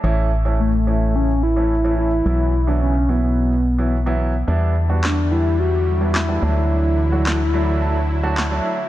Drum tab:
CP |--------|--------|--x---x-|--x---x-|
SD |--------|--------|--o---o-|--o---o-|